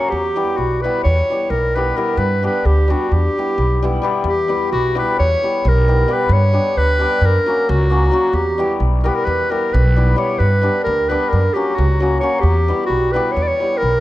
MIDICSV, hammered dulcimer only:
0, 0, Header, 1, 2, 480
1, 0, Start_track
1, 0, Tempo, 457317
1, 120, Time_signature, 9, 3, 24, 8
1, 7319, Tempo, 453858
1, 14752, End_track
2, 0, Start_track
2, 0, Title_t, "Hammered dulcimer"
2, 0, Program_c, 0, 15
2, 0, Note_on_c, 0, 54, 58
2, 172, Note_off_c, 0, 54, 0
2, 374, Note_on_c, 0, 55, 55
2, 379, Note_on_c, 0, 64, 49
2, 382, Note_on_c, 0, 59, 46
2, 386, Note_on_c, 0, 67, 62
2, 562, Note_off_c, 0, 64, 0
2, 563, Note_off_c, 0, 59, 0
2, 566, Note_off_c, 0, 67, 0
2, 868, Note_off_c, 0, 55, 0
2, 881, Note_on_c, 0, 55, 55
2, 885, Note_on_c, 0, 59, 56
2, 893, Note_on_c, 0, 64, 52
2, 898, Note_on_c, 0, 67, 57
2, 1062, Note_off_c, 0, 59, 0
2, 1066, Note_off_c, 0, 64, 0
2, 1068, Note_off_c, 0, 67, 0
2, 1353, Note_off_c, 0, 55, 0
2, 1365, Note_on_c, 0, 55, 51
2, 1375, Note_on_c, 0, 59, 40
2, 1383, Note_on_c, 0, 64, 47
2, 1391, Note_on_c, 0, 67, 56
2, 1553, Note_off_c, 0, 59, 0
2, 1557, Note_off_c, 0, 64, 0
2, 1561, Note_off_c, 0, 67, 0
2, 1831, Note_off_c, 0, 55, 0
2, 1842, Note_on_c, 0, 59, 50
2, 1843, Note_on_c, 0, 55, 52
2, 1854, Note_on_c, 0, 64, 47
2, 1862, Note_on_c, 0, 67, 57
2, 2019, Note_off_c, 0, 59, 0
2, 2025, Note_off_c, 0, 64, 0
2, 2029, Note_off_c, 0, 67, 0
2, 2050, Note_off_c, 0, 55, 0
2, 2063, Note_on_c, 0, 55, 49
2, 2064, Note_on_c, 0, 59, 49
2, 2076, Note_on_c, 0, 64, 55
2, 2076, Note_on_c, 0, 67, 53
2, 2239, Note_off_c, 0, 59, 0
2, 2245, Note_off_c, 0, 64, 0
2, 2245, Note_off_c, 0, 67, 0
2, 2339, Note_off_c, 0, 55, 0
2, 2546, Note_on_c, 0, 55, 49
2, 2556, Note_on_c, 0, 59, 52
2, 2558, Note_on_c, 0, 62, 48
2, 2564, Note_on_c, 0, 67, 59
2, 2733, Note_off_c, 0, 59, 0
2, 2734, Note_off_c, 0, 62, 0
2, 2737, Note_off_c, 0, 67, 0
2, 3009, Note_off_c, 0, 55, 0
2, 3022, Note_on_c, 0, 55, 60
2, 3037, Note_on_c, 0, 59, 53
2, 3044, Note_on_c, 0, 62, 56
2, 3047, Note_on_c, 0, 67, 63
2, 3220, Note_off_c, 0, 59, 0
2, 3223, Note_off_c, 0, 62, 0
2, 3224, Note_off_c, 0, 67, 0
2, 3300, Note_off_c, 0, 55, 0
2, 3547, Note_on_c, 0, 55, 45
2, 3554, Note_on_c, 0, 59, 40
2, 3558, Note_on_c, 0, 64, 43
2, 3558, Note_on_c, 0, 67, 53
2, 3724, Note_off_c, 0, 59, 0
2, 3726, Note_off_c, 0, 64, 0
2, 3726, Note_off_c, 0, 67, 0
2, 4002, Note_off_c, 0, 55, 0
2, 4014, Note_on_c, 0, 55, 66
2, 4028, Note_on_c, 0, 64, 64
2, 4030, Note_on_c, 0, 59, 58
2, 4036, Note_on_c, 0, 67, 57
2, 4192, Note_off_c, 0, 64, 0
2, 4194, Note_off_c, 0, 59, 0
2, 4197, Note_off_c, 0, 67, 0
2, 4204, Note_off_c, 0, 55, 0
2, 4217, Note_on_c, 0, 55, 61
2, 4231, Note_on_c, 0, 59, 58
2, 4239, Note_on_c, 0, 64, 55
2, 4245, Note_on_c, 0, 67, 75
2, 4404, Note_off_c, 0, 59, 0
2, 4407, Note_off_c, 0, 64, 0
2, 4411, Note_off_c, 0, 67, 0
2, 4500, Note_off_c, 0, 55, 0
2, 4704, Note_on_c, 0, 55, 60
2, 4715, Note_on_c, 0, 59, 55
2, 4720, Note_on_c, 0, 64, 53
2, 4720, Note_on_c, 0, 67, 57
2, 4893, Note_off_c, 0, 59, 0
2, 4895, Note_off_c, 0, 64, 0
2, 4895, Note_off_c, 0, 67, 0
2, 5185, Note_off_c, 0, 55, 0
2, 5195, Note_on_c, 0, 59, 52
2, 5197, Note_on_c, 0, 55, 64
2, 5201, Note_on_c, 0, 64, 55
2, 5212, Note_on_c, 0, 67, 71
2, 5378, Note_off_c, 0, 59, 0
2, 5381, Note_off_c, 0, 64, 0
2, 5386, Note_off_c, 0, 67, 0
2, 5686, Note_off_c, 0, 55, 0
2, 5698, Note_on_c, 0, 55, 46
2, 5701, Note_on_c, 0, 59, 41
2, 5706, Note_on_c, 0, 64, 46
2, 5715, Note_on_c, 0, 67, 49
2, 5875, Note_off_c, 0, 59, 0
2, 5878, Note_off_c, 0, 64, 0
2, 5883, Note_off_c, 0, 67, 0
2, 6157, Note_off_c, 0, 55, 0
2, 6170, Note_on_c, 0, 55, 53
2, 6172, Note_on_c, 0, 59, 47
2, 6178, Note_on_c, 0, 64, 48
2, 6180, Note_on_c, 0, 67, 55
2, 6342, Note_off_c, 0, 59, 0
2, 6345, Note_off_c, 0, 64, 0
2, 6346, Note_off_c, 0, 67, 0
2, 6368, Note_off_c, 0, 55, 0
2, 6380, Note_on_c, 0, 55, 65
2, 6384, Note_on_c, 0, 59, 50
2, 6389, Note_on_c, 0, 64, 46
2, 6403, Note_on_c, 0, 67, 56
2, 6557, Note_off_c, 0, 59, 0
2, 6560, Note_off_c, 0, 64, 0
2, 6567, Note_off_c, 0, 67, 0
2, 6656, Note_off_c, 0, 55, 0
2, 6848, Note_on_c, 0, 55, 56
2, 6856, Note_on_c, 0, 59, 57
2, 6864, Note_on_c, 0, 62, 54
2, 6868, Note_on_c, 0, 67, 59
2, 7040, Note_off_c, 0, 59, 0
2, 7044, Note_off_c, 0, 62, 0
2, 7046, Note_off_c, 0, 67, 0
2, 7319, Note_off_c, 0, 55, 0
2, 7332, Note_on_c, 0, 55, 59
2, 7349, Note_on_c, 0, 62, 59
2, 7351, Note_on_c, 0, 59, 53
2, 7359, Note_on_c, 0, 67, 69
2, 7532, Note_off_c, 0, 62, 0
2, 7534, Note_off_c, 0, 59, 0
2, 7538, Note_off_c, 0, 67, 0
2, 7614, Note_off_c, 0, 55, 0
2, 7836, Note_on_c, 0, 54, 52
2, 7840, Note_on_c, 0, 58, 52
2, 7854, Note_on_c, 0, 61, 47
2, 7860, Note_on_c, 0, 66, 53
2, 8024, Note_off_c, 0, 58, 0
2, 8032, Note_off_c, 0, 61, 0
2, 8035, Note_off_c, 0, 66, 0
2, 8293, Note_off_c, 0, 54, 0
2, 8300, Note_on_c, 0, 58, 55
2, 8306, Note_on_c, 0, 54, 48
2, 8314, Note_on_c, 0, 61, 49
2, 8319, Note_on_c, 0, 66, 58
2, 8487, Note_off_c, 0, 58, 0
2, 8494, Note_off_c, 0, 61, 0
2, 8496, Note_off_c, 0, 66, 0
2, 8509, Note_off_c, 0, 54, 0
2, 8522, Note_on_c, 0, 54, 55
2, 8532, Note_on_c, 0, 58, 53
2, 8534, Note_on_c, 0, 61, 50
2, 8545, Note_on_c, 0, 66, 73
2, 8713, Note_off_c, 0, 58, 0
2, 8714, Note_off_c, 0, 61, 0
2, 8719, Note_off_c, 0, 66, 0
2, 8818, Note_off_c, 0, 54, 0
2, 9017, Note_on_c, 0, 55, 58
2, 9027, Note_on_c, 0, 59, 44
2, 9029, Note_on_c, 0, 64, 55
2, 9038, Note_on_c, 0, 67, 67
2, 9209, Note_off_c, 0, 59, 0
2, 9209, Note_off_c, 0, 64, 0
2, 9213, Note_off_c, 0, 67, 0
2, 9489, Note_off_c, 0, 55, 0
2, 9501, Note_on_c, 0, 55, 60
2, 9505, Note_on_c, 0, 59, 58
2, 9518, Note_on_c, 0, 64, 56
2, 9522, Note_on_c, 0, 67, 68
2, 9693, Note_off_c, 0, 59, 0
2, 9700, Note_off_c, 0, 64, 0
2, 9702, Note_off_c, 0, 67, 0
2, 9975, Note_off_c, 0, 55, 0
2, 9988, Note_on_c, 0, 55, 48
2, 10002, Note_on_c, 0, 59, 42
2, 10007, Note_on_c, 0, 64, 43
2, 10008, Note_on_c, 0, 67, 51
2, 10188, Note_off_c, 0, 59, 0
2, 10190, Note_off_c, 0, 64, 0
2, 10191, Note_off_c, 0, 67, 0
2, 10471, Note_off_c, 0, 55, 0
2, 10483, Note_on_c, 0, 55, 62
2, 10492, Note_on_c, 0, 59, 52
2, 10497, Note_on_c, 0, 64, 52
2, 10498, Note_on_c, 0, 67, 54
2, 10665, Note_off_c, 0, 59, 0
2, 10667, Note_off_c, 0, 64, 0
2, 10668, Note_off_c, 0, 67, 0
2, 10681, Note_off_c, 0, 55, 0
2, 10693, Note_on_c, 0, 55, 59
2, 10701, Note_on_c, 0, 59, 52
2, 10706, Note_on_c, 0, 64, 53
2, 10709, Note_on_c, 0, 67, 64
2, 10879, Note_off_c, 0, 59, 0
2, 10881, Note_off_c, 0, 64, 0
2, 10882, Note_off_c, 0, 67, 0
2, 10981, Note_off_c, 0, 55, 0
2, 11171, Note_on_c, 0, 55, 52
2, 11179, Note_on_c, 0, 59, 46
2, 11187, Note_on_c, 0, 62, 55
2, 11195, Note_on_c, 0, 67, 52
2, 11365, Note_off_c, 0, 59, 0
2, 11369, Note_off_c, 0, 62, 0
2, 11373, Note_off_c, 0, 67, 0
2, 11666, Note_off_c, 0, 55, 0
2, 11679, Note_on_c, 0, 55, 65
2, 11679, Note_on_c, 0, 59, 58
2, 11694, Note_on_c, 0, 67, 68
2, 11695, Note_on_c, 0, 62, 57
2, 11861, Note_off_c, 0, 59, 0
2, 11868, Note_off_c, 0, 67, 0
2, 11869, Note_off_c, 0, 62, 0
2, 11941, Note_off_c, 0, 55, 0
2, 12156, Note_on_c, 0, 54, 45
2, 12161, Note_on_c, 0, 58, 44
2, 12165, Note_on_c, 0, 61, 44
2, 12177, Note_on_c, 0, 66, 53
2, 12347, Note_off_c, 0, 58, 0
2, 12349, Note_off_c, 0, 61, 0
2, 12355, Note_off_c, 0, 66, 0
2, 12626, Note_off_c, 0, 54, 0
2, 12636, Note_on_c, 0, 58, 46
2, 12639, Note_on_c, 0, 54, 51
2, 12657, Note_on_c, 0, 61, 52
2, 12659, Note_on_c, 0, 66, 50
2, 12816, Note_off_c, 0, 58, 0
2, 12827, Note_off_c, 0, 61, 0
2, 12827, Note_off_c, 0, 66, 0
2, 12847, Note_off_c, 0, 54, 0
2, 12860, Note_on_c, 0, 54, 54
2, 12876, Note_on_c, 0, 58, 44
2, 12878, Note_on_c, 0, 61, 49
2, 12881, Note_on_c, 0, 66, 56
2, 13045, Note_off_c, 0, 58, 0
2, 13046, Note_off_c, 0, 61, 0
2, 13048, Note_off_c, 0, 66, 0
2, 13140, Note_off_c, 0, 54, 0
2, 13357, Note_on_c, 0, 55, 54
2, 13358, Note_on_c, 0, 59, 55
2, 13374, Note_on_c, 0, 67, 51
2, 13375, Note_on_c, 0, 64, 52
2, 13533, Note_off_c, 0, 59, 0
2, 13541, Note_off_c, 0, 67, 0
2, 13542, Note_off_c, 0, 64, 0
2, 13827, Note_off_c, 0, 55, 0
2, 13840, Note_on_c, 0, 55, 60
2, 13842, Note_on_c, 0, 59, 57
2, 13853, Note_on_c, 0, 64, 54
2, 13864, Note_on_c, 0, 67, 76
2, 14020, Note_off_c, 0, 59, 0
2, 14025, Note_off_c, 0, 64, 0
2, 14031, Note_off_c, 0, 67, 0
2, 14315, Note_off_c, 0, 55, 0
2, 14328, Note_on_c, 0, 55, 52
2, 14337, Note_on_c, 0, 59, 41
2, 14349, Note_on_c, 0, 64, 45
2, 14355, Note_on_c, 0, 67, 44
2, 14512, Note_off_c, 0, 59, 0
2, 14518, Note_off_c, 0, 64, 0
2, 14521, Note_off_c, 0, 67, 0
2, 14752, Note_off_c, 0, 55, 0
2, 14752, End_track
0, 0, End_of_file